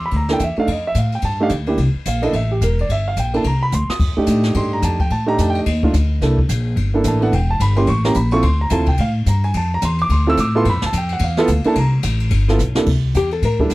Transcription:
Already playing: E2
0.06 B5
0.11 D2, kick, ride
0.16 A#5
0.29 A#3 D4 E4 A4, snare
0.33 G5
0.39 E2, kick, hi-hat pedal, ride
0.44 E5
0.56 A3 D4 D#4 A4 F5, muted upright bass stroke, ride
0.67 F2, kick, ride
0.72 D#5
0.87 E5
0.94 A2 F5, kick, hi-hat pedal, ride
1.12 G5, ride
1.22 G2 A5, kick, ride
1.40 A3 D4 D#4 G4 F5
1.49 D2, kick, hi-hat pedal, ride
1.66 A#3 D4 E4 G4, ride
1.78 C2, kick, ride
1.94 muted upright bass stroke
2.05 A#1 F5, kick, hi-hat pedal, ride
2.22 A#3 D4 E4 A4 D#5, ride
2.33 A1 E5, kick, ride
2.52 G4
2.61 E1 A#4, kick, hi-hat pedal, ride
2.79 D5, ride
2.89 G1 E5, kick, ride
3.08 F5
3.17 A#1 G5, kick, hi-hat pedal, ride
3.34 A#3 D4 E4 A4 A5, ride
3.44 C2 A#5, kick, ride
3.63 B5
3.72 D2 C6, hi-hat pedal
3.89 D#6, muted upright bass stroke, snare
4.00 F2, kick, crash
4.17 A3 D4 D#4 G4, muted upright bass stroke
4.26 A2, kick, hi-hat pedal, ride
4.43 snare, ride
4.54 G2 A3 D4 D#4 G4 C6, kick, ride
4.73 A#5
4.82 F2 A5, kick, hi-hat pedal, ride
4.99 G5, kick, ride
5.10 A2 A5, ride
5.26 A3 D4 D#4 G4 A#5
5.38 F2 A5, kick, hi-hat pedal, ride
5.50 G5
5.55 ride
5.59 D#5
5.66 D#2, kick, ride
5.83 A3 D4 D#4 F4, kick
5.94 D2, hi-hat pedal, ride
6.21 C2 A#3 D4 E4 A4, kick, snare, ride
6.38 kick
6.49 A#1, kick, hi-hat pedal, ride
6.76 G1, kick, ride
6.94 A#3 D4 E4 A4
7.04 A1, kick, hi-hat pedal, ride
7.08 A5
7.21 B3 D4 E4 A4 F#5, ride
7.32 E1 G5, kick, ride
7.50 A5
7.60 G1 B5, kick, hi-hat pedal, ride
7.76 A#3 C#4 E4 G4 C6, ride
7.87 A1 C#6, kick, ride
8.04 A#3 C#4 E4 G4 A#5, snare
8.14 A#1 B5, kick, hi-hat pedal, ride
8.31 C4 E4 F4 A4 C#6, ride
8.42 D2 C6, kick, ride
8.61 A#5
8.70 F2 C4 E4 F4 A4 A5, kick, hi-hat pedal, ride
8.79 D2
8.86 C2 G5, kick, ride
8.98 A2 F5, kick, ride
9.26 G2 A#5, kick, hi-hat pedal, ride
9.43 G#5, ride
9.54 F2 A5, kick, ride
9.74 A#5
9.81 E2 C6, kick, hi-hat pedal, ride
9.98 D6, ride
10.09 D2 C6, kick, ride
10.27 C4 E4 F4 A4 E6
10.37 A2 D6, kick, hi-hat pedal, ride
10.55 B3 E4 F4 A4 C6
10.65 G2, kick, ride
10.70 F2 B5
10.82 D2, snare
10.86 A5
10.93 F2, kick, hi-hat pedal, ride
10.97 G5
11.09 F#5, ride
11.19 E2, kick, ride
11.24 F5
11.37 B3 E4 F4 A4, snare
11.47 D2, kick, hi-hat pedal, ride
11.64 A#3 D4 E4 A4 A5, muted upright bass stroke, ride
11.75 C2 A#5, kick, ride
12.03 A1, kick, hi-hat pedal, ride
12.20 ride
12.31 G1, kick, ride
12.48 B3 E4 F4 A4, snare
12.59 B1, hi-hat pedal
12.75 C3 A#3 D4 E4 A4, snare
12.86 C2, kick, crash
13.14 E2 G4, kick, hi-hat pedal, ride
13.31 A4, ride
13.42 A2 A#4, kick, ride
13.59 G3 A#3 D4 E4 A4, kick
13.70 G2, hi-hat pedal, ride

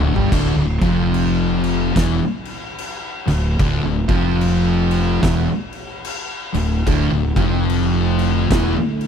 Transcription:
Already playing: D3 A3 D4
0.00 D1 D2 D3
0.15 G1 G2 G3, floor tom
0.32 D1 D2 D3, kick, crash
0.56 D1 D2
0.81 F1 F2 F3, kick, crash
1.14 crash
1.64 crash
1.96 E1 E2 E3, kick, snare, crash
2.45 crash
2.78 crash
3.27 D1 D2, snare, crash
3.59 D1 D2 D3, kick, crash
3.84 D1 D2
4.09 F1 F2 F3, kick, crash
4.41 crash
4.91 crash
5.22 E1 E2 E3, kick, snare, crash
5.73 crash
6.05 crash
6.54 D1 D2, crash
6.87 D1 D2 D3 A3 E4, kick, crash
7.12 D1 D2
7.36 F1 F2 F3, kick, crash
7.70 crash
8.19 crash
8.50 E1 E2 E3, kick, snare, crash
9.01 crash

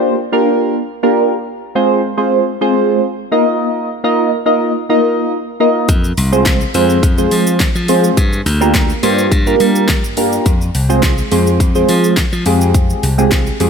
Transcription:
Already playing: A#3 D4 F4 G4 C5
0.32 A#3 D4 F4 G4 A#4
1.03 A#3 D4 F4 G4 A#4
1.75 G#3 C4 F4 G#4 C5
2.17 G#3 C4 F4 G#4 C5
2.61 G#3 C4 F4 G#4 C5
3.32 A#3 D#4 F4 A#4 D#5
4.04 A#3 D#4 F4 A#4 D#5
4.46 A#3 D#4 F4 A#4 D#5
4.89 A#3 D#4 F4 A#4 D#5
5.60 A#3 D#4 F4 A#4 D#5
5.89 F2, kick, closed hi-hat, shaker
6.04 shaker
6.17 C2, open hi-hat, shaker
6.32 G#3 C4 F4 G#4 C5, shaker
6.46 kick, snare, clap, closed hi-hat, shaker
6.61 shaker
6.74 F2 G#3 C4 F4 G#4 C5, open hi-hat, shaker
6.90 shaker
7.03 F2, kick, closed hi-hat, shaker
7.18 G#3 C4 F4 G#4 C5, shaker
7.31 F3, open hi-hat, shaker
7.47 shaker
7.60 kick, snare, clap, closed hi-hat, shaker
7.75 F3, shaker
7.88 G#3 C4 F4 G#4 C5, open hi-hat, shaker
8.04 shaker
8.17 G2, kick, closed hi-hat, shaker
8.33 shaker
8.46 D2, open hi-hat, shaker
8.61 A#3 D4 F4 G4 A#4, shaker
8.74 kick, snare, clap, closed hi-hat, shaker
8.90 shaker
9.03 G2 A#3 D4 F4 G4 C5, open hi-hat, shaker
9.18 shaker
9.32 G2, kick, closed hi-hat, shaker
9.47 A#3 D4 F4 G4 A#4, shaker
9.60 G3, open hi-hat, shaker
9.75 shaker
9.89 kick, snare, clap, closed hi-hat, shaker
10.04 G2, shaker
10.17 A#3 D4 F4 G4 A#4, open hi-hat, shaker
10.32 shaker
10.46 F2, kick, closed hi-hat, shaker
10.61 shaker
10.75 C2, open hi-hat, shaker
10.89 G#3 C4 F4 G#4 C5, shaker
11.03 kick, snare, clap, closed hi-hat, shaker
11.18 shaker
11.31 F2 G#3 C4 F4 G#4 C5, open hi-hat, shaker
11.47 shaker
11.60 F2, kick, closed hi-hat, shaker
11.75 G#3 C4 F4 G#4 C5, shaker
11.89 F3, open hi-hat, shaker
12.04 shaker
12.17 kick, snare, clap, closed hi-hat, shaker
12.33 F3, shaker
12.46 F2 G#3 C4 F4 G4 G#4, open hi-hat, shaker
12.61 shaker
12.74 kick, closed hi-hat, shaker
12.90 shaker
13.03 C2, open hi-hat, shaker
13.18 G#3 C4 F4 G4 G#4, shaker
13.32 kick, snare, clap, closed hi-hat, shaker
13.47 shaker
13.60 F2 G#3 C4 F4 G4 G#4, open hi-hat, shaker

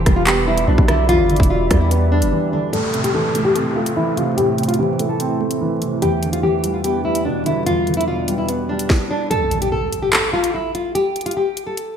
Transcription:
Already playing: E2 D3 E3 G4 D5 E5 B5
0.06 E1 G3, kick, cross-stick, closed hi-hat
0.16 F4
0.27 B3 G4, clap, closed hi-hat
0.47 G3 E4
0.57 closed hi-hat
0.67 B1 B2 D4
0.78 B1, kick
0.88 D3 E4, cross-stick, closed hi-hat
1.09 E2 F4, closed hi-hat
1.19 G1
1.30 D3, closed hi-hat
1.36 E1 E4, kick, closed hi-hat
1.43 closed hi-hat
1.50 B2 F4
1.71 E2 G3, kick, cross-stick, closed hi-hat
1.81 E4
1.91 B3, closed hi-hat
2.12 G3 D4
2.22 G1, closed hi-hat
2.33 E3
2.53 D3 D4
2.73 A2 A3 E4 A4 C5 E5, closed hi-hat, downlifter
2.93 C3, closed hi-hat
3.04 G4, closed hi-hat
3.14 E3 A4
3.35 A3, closed hi-hat
3.45 G4
3.55 C4 A4, closed hi-hat
3.76 A3 F4
3.86 closed hi-hat
3.97 E3 E4
4.17 C3 F4, closed hi-hat
4.37 A2 G4, closed hi-hat
4.58 C3, closed hi-hat
4.63 closed hi-hat
4.68 F4, closed hi-hat
4.74 closed hi-hat
4.79 E3 G4
4.99 A3, closed hi-hat
5.09 A4
5.20 C4, closed hi-hat
5.40 A3
5.51 closed hi-hat
5.61 E3
5.81 C3, closed hi-hat
6.02 E2 G3 D4 G4 B4, closed hi-hat
6.23 D3, closed hi-hat
6.33 F4, closed hi-hat
6.43 E3 G4
6.64 G3, closed hi-hat
6.74 F4
6.84 B3 G4, closed hi-hat
7.05 G3 E4
7.15 closed hi-hat
7.25 B2 D4
7.46 D3 E4, closed hi-hat
7.66 E2 F4, closed hi-hat
7.87 D3, closed hi-hat
7.94 E4, closed hi-hat
8.01 closed hi-hat
8.08 B2 F4
8.28 G3, closed hi-hat
8.38 E4
8.49 B3, closed hi-hat
8.69 G3 D4
8.79 closed hi-hat
8.90 kick, snare
9.10 D4
9.30 A4, closed hi-hat, impact
9.51 closed hi-hat
9.62 G4, closed hi-hat
9.72 A4
9.93 closed hi-hat
10.02 G4
10.13 A4, clap, closed hi-hat
10.33 F4
10.44 closed hi-hat
10.54 E4
10.75 F4, closed hi-hat
10.95 G4, closed hi-hat
11.16 closed hi-hat
11.21 closed hi-hat
11.26 F4, closed hi-hat
11.31 closed hi-hat
11.37 G4
11.57 closed hi-hat
11.67 A4
11.77 closed hi-hat

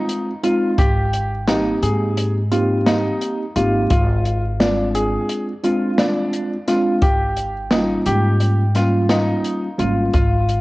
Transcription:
Already playing: G#3 C4 D#4 F4
0.09 closed hi-hat
0.43 G#3 C4 D#4 F4, closed hi-hat
0.78 G#1 G4, kick, closed hi-hat
1.13 closed hi-hat
1.48 A#3 C4 D#4 G4, snare, closed hi-hat
1.82 G#2 G#4, closed hi-hat
2.17 closed hi-hat
2.52 A#3 C4 D#4 F4 G4, closed hi-hat
2.86 D#4, snare, closed hi-hat
3.21 closed hi-hat
3.56 G#1 A#3 C4 D#4 F4 G4, closed hi-hat
3.90 G#1 F4, kick, closed hi-hat
4.25 closed hi-hat
4.60 G#3 C4 D4 F4, snare, closed hi-hat
4.95 G#4, closed hi-hat
5.29 closed hi-hat
5.64 G#3 C4 D4 F4, closed hi-hat
5.98 D4, snare, closed hi-hat
6.33 closed hi-hat
6.68 G#3 C4 D4 F4, snare, closed hi-hat
7.02 G#1 G4, kick, closed hi-hat
7.37 closed hi-hat
7.71 G3 A#3 C#4 D#4 F4, snare, closed hi-hat
8.06 G#2 G4, closed hi-hat
8.40 closed hi-hat
8.75 G3 A#3 C#4 F4, snare, closed hi-hat
9.09 D#4, snare, closed hi-hat
9.44 closed hi-hat
9.78 G#1 G3 A#3 C#4 F4, closed hi-hat
10.13 G#1 F4, kick, closed hi-hat
10.49 closed hi-hat

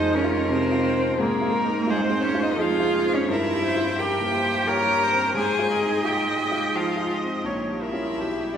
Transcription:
Already playing: F2 D#4 F4 C5 D#5
0.01 G#3
0.14 C#4 A#4 C#5
0.24 F4
0.49 C3 C4 C5
0.72 F4
0.96 C4
1.18 G#2 A#3 G#4 A#4
1.41 F4
1.52 A#4
1.64 D#4
1.87 G#3 F4 G#4 C5
2.05 C4 C5
2.09 G#3
2.23 C#4 C#5
2.34 F4
2.42 D#4 D#5
2.57 F3 F4 G#4
2.61 F5
2.80 F4
3.06 C4
3.14 C#4 C#5
3.29 G2 E4 A#4
3.33 E5
3.53 G4
3.64 C5
3.77 F4
3.99 G4 A#4 G5
4.20 A#3
4.33 C5
4.45 G4
4.67 G3 A#4 C#5 A#5
4.89 G4
5.03 C5
5.12 C4
5.34 G#2 G#4 C5 G#5
5.59 F4
5.73 D#5
5.82 D#4
6.05 F4 G4 G5
6.28 G#3
6.51 F4
6.75 F3 F4 F5
6.96 F4
7.22 C4
7.44 A#1 C#5
7.68 G3
7.81 E4 A#4 E5
7.92 C#4 F4
8.18 B1 G4
8.41 G3
8.53 D5

